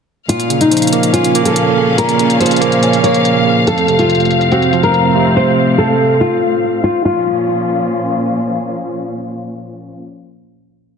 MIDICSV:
0, 0, Header, 1, 5, 480
1, 0, Start_track
1, 0, Key_signature, -5, "minor"
1, 0, Tempo, 422535
1, 332, Time_signature, 4, 2, 24, 8
1, 12472, End_track
2, 0, Start_track
2, 0, Title_t, "Nylon-string guitar"
2, 0, Program_c, 0, 24
2, 332, Note_on_c, 0, 65, 97
2, 670, Note_off_c, 0, 65, 0
2, 691, Note_on_c, 0, 63, 78
2, 1256, Note_off_c, 0, 63, 0
2, 1291, Note_on_c, 0, 65, 77
2, 1630, Note_off_c, 0, 65, 0
2, 1654, Note_on_c, 0, 69, 78
2, 2217, Note_off_c, 0, 69, 0
2, 2252, Note_on_c, 0, 70, 92
2, 2703, Note_off_c, 0, 70, 0
2, 2735, Note_on_c, 0, 72, 75
2, 3410, Note_off_c, 0, 72, 0
2, 3451, Note_on_c, 0, 73, 79
2, 4128, Note_off_c, 0, 73, 0
2, 4175, Note_on_c, 0, 69, 91
2, 4512, Note_off_c, 0, 69, 0
2, 4533, Note_on_c, 0, 65, 73
2, 5097, Note_off_c, 0, 65, 0
2, 5134, Note_on_c, 0, 66, 74
2, 5472, Note_off_c, 0, 66, 0
2, 5491, Note_on_c, 0, 70, 87
2, 6056, Note_off_c, 0, 70, 0
2, 6095, Note_on_c, 0, 72, 102
2, 6545, Note_off_c, 0, 72, 0
2, 6570, Note_on_c, 0, 69, 93
2, 7022, Note_off_c, 0, 69, 0
2, 7052, Note_on_c, 0, 65, 76
2, 7729, Note_off_c, 0, 65, 0
2, 7766, Note_on_c, 0, 65, 86
2, 7972, Note_off_c, 0, 65, 0
2, 8011, Note_on_c, 0, 65, 83
2, 9406, Note_off_c, 0, 65, 0
2, 12472, End_track
3, 0, Start_track
3, 0, Title_t, "String section"
3, 0, Program_c, 1, 48
3, 334, Note_on_c, 1, 46, 81
3, 334, Note_on_c, 1, 61, 73
3, 334, Note_on_c, 1, 77, 88
3, 4135, Note_off_c, 1, 46, 0
3, 4135, Note_off_c, 1, 61, 0
3, 4172, Note_on_c, 1, 45, 80
3, 4172, Note_on_c, 1, 60, 74
3, 7967, Note_off_c, 1, 77, 0
3, 7973, Note_off_c, 1, 45, 0
3, 7973, Note_off_c, 1, 60, 0
3, 8012, Note_on_c, 1, 46, 83
3, 8012, Note_on_c, 1, 61, 73
3, 8012, Note_on_c, 1, 65, 89
3, 8013, Note_on_c, 1, 53, 76
3, 11376, Note_off_c, 1, 46, 0
3, 11377, Note_off_c, 1, 53, 0
3, 11377, Note_off_c, 1, 61, 0
3, 11377, Note_off_c, 1, 65, 0
3, 12472, End_track
4, 0, Start_track
4, 0, Title_t, "Tine electric piano"
4, 0, Program_c, 2, 4
4, 324, Note_on_c, 2, 46, 89
4, 563, Control_c, 2, 64, 127
4, 568, Note_on_c, 2, 49, 72
4, 812, Note_on_c, 2, 53, 74
4, 1055, Note_on_c, 2, 58, 89
4, 1282, Note_on_c, 2, 61, 75
4, 1521, Note_off_c, 2, 58, 0
4, 1528, Note_off_c, 2, 46, 0
4, 1535, Note_on_c, 2, 58, 83
4, 1770, Note_off_c, 2, 49, 0
4, 2012, Note_off_c, 2, 53, 0
4, 2012, Note_on_c, 2, 49, 76
4, 2248, Note_on_c, 2, 46, 87
4, 2477, Note_off_c, 2, 49, 0
4, 2487, Note_off_c, 2, 61, 0
4, 2491, Note_on_c, 2, 49, 74
4, 2728, Note_on_c, 2, 53, 79
4, 2734, Note_off_c, 2, 58, 0
4, 2964, Note_on_c, 2, 58, 88
4, 3219, Note_on_c, 2, 61, 75
4, 3436, Note_off_c, 2, 58, 0
4, 3449, Note_on_c, 2, 58, 76
4, 3450, Note_off_c, 2, 46, 0
4, 3691, Note_off_c, 2, 49, 0
4, 3925, Note_on_c, 2, 49, 72
4, 3930, Note_off_c, 2, 53, 0
4, 4169, Note_off_c, 2, 49, 0
4, 4171, Note_off_c, 2, 58, 0
4, 4176, Note_off_c, 2, 61, 0
4, 4185, Control_c, 2, 64, 0
4, 4363, Control_c, 2, 64, 127
4, 4413, Note_on_c, 2, 48, 74
4, 5132, Note_on_c, 2, 60, 76
4, 5374, Note_on_c, 2, 53, 79
4, 5613, Note_off_c, 2, 48, 0
4, 5852, Note_on_c, 2, 48, 86
4, 6107, Control_c, 2, 64, 0
4, 6332, Note_off_c, 2, 60, 0
4, 6573, Note_off_c, 2, 53, 0
4, 7052, Note_off_c, 2, 48, 0
4, 12472, End_track
5, 0, Start_track
5, 0, Title_t, "Drums"
5, 332, Note_on_c, 9, 42, 84
5, 446, Note_off_c, 9, 42, 0
5, 450, Note_on_c, 9, 42, 45
5, 564, Note_off_c, 9, 42, 0
5, 571, Note_on_c, 9, 42, 73
5, 684, Note_off_c, 9, 42, 0
5, 691, Note_on_c, 9, 42, 55
5, 805, Note_off_c, 9, 42, 0
5, 812, Note_on_c, 9, 42, 60
5, 873, Note_off_c, 9, 42, 0
5, 873, Note_on_c, 9, 42, 60
5, 933, Note_off_c, 9, 42, 0
5, 933, Note_on_c, 9, 42, 62
5, 992, Note_off_c, 9, 42, 0
5, 992, Note_on_c, 9, 42, 62
5, 1052, Note_off_c, 9, 42, 0
5, 1052, Note_on_c, 9, 42, 83
5, 1166, Note_off_c, 9, 42, 0
5, 1172, Note_on_c, 9, 42, 56
5, 1286, Note_off_c, 9, 42, 0
5, 1292, Note_on_c, 9, 42, 67
5, 1405, Note_off_c, 9, 42, 0
5, 1414, Note_on_c, 9, 42, 56
5, 1528, Note_off_c, 9, 42, 0
5, 1534, Note_on_c, 9, 42, 75
5, 1647, Note_off_c, 9, 42, 0
5, 1653, Note_on_c, 9, 42, 54
5, 1766, Note_off_c, 9, 42, 0
5, 1773, Note_on_c, 9, 42, 87
5, 1886, Note_off_c, 9, 42, 0
5, 2253, Note_on_c, 9, 42, 84
5, 2367, Note_off_c, 9, 42, 0
5, 2371, Note_on_c, 9, 42, 46
5, 2485, Note_off_c, 9, 42, 0
5, 2493, Note_on_c, 9, 42, 74
5, 2606, Note_off_c, 9, 42, 0
5, 2612, Note_on_c, 9, 42, 57
5, 2726, Note_off_c, 9, 42, 0
5, 2733, Note_on_c, 9, 42, 62
5, 2793, Note_off_c, 9, 42, 0
5, 2793, Note_on_c, 9, 42, 61
5, 2852, Note_off_c, 9, 42, 0
5, 2852, Note_on_c, 9, 42, 60
5, 2913, Note_off_c, 9, 42, 0
5, 2913, Note_on_c, 9, 42, 61
5, 2972, Note_off_c, 9, 42, 0
5, 2972, Note_on_c, 9, 42, 83
5, 3086, Note_off_c, 9, 42, 0
5, 3092, Note_on_c, 9, 42, 58
5, 3206, Note_off_c, 9, 42, 0
5, 3211, Note_on_c, 9, 42, 67
5, 3325, Note_off_c, 9, 42, 0
5, 3333, Note_on_c, 9, 42, 58
5, 3446, Note_off_c, 9, 42, 0
5, 3453, Note_on_c, 9, 42, 72
5, 3567, Note_off_c, 9, 42, 0
5, 3572, Note_on_c, 9, 42, 56
5, 3686, Note_off_c, 9, 42, 0
5, 3693, Note_on_c, 9, 42, 90
5, 3807, Note_off_c, 9, 42, 0
5, 4172, Note_on_c, 9, 42, 83
5, 4286, Note_off_c, 9, 42, 0
5, 4290, Note_on_c, 9, 42, 46
5, 4404, Note_off_c, 9, 42, 0
5, 4412, Note_on_c, 9, 42, 74
5, 4525, Note_off_c, 9, 42, 0
5, 4532, Note_on_c, 9, 42, 57
5, 4645, Note_off_c, 9, 42, 0
5, 4653, Note_on_c, 9, 42, 63
5, 4712, Note_off_c, 9, 42, 0
5, 4712, Note_on_c, 9, 42, 61
5, 4773, Note_off_c, 9, 42, 0
5, 4773, Note_on_c, 9, 42, 63
5, 4831, Note_off_c, 9, 42, 0
5, 4831, Note_on_c, 9, 42, 60
5, 4891, Note_off_c, 9, 42, 0
5, 4891, Note_on_c, 9, 42, 82
5, 5005, Note_off_c, 9, 42, 0
5, 5010, Note_on_c, 9, 42, 58
5, 5124, Note_off_c, 9, 42, 0
5, 5131, Note_on_c, 9, 42, 64
5, 5244, Note_off_c, 9, 42, 0
5, 5252, Note_on_c, 9, 42, 57
5, 5366, Note_off_c, 9, 42, 0
5, 5373, Note_on_c, 9, 42, 72
5, 5486, Note_off_c, 9, 42, 0
5, 5491, Note_on_c, 9, 42, 54
5, 5604, Note_off_c, 9, 42, 0
5, 5612, Note_on_c, 9, 42, 87
5, 5726, Note_off_c, 9, 42, 0
5, 12472, End_track
0, 0, End_of_file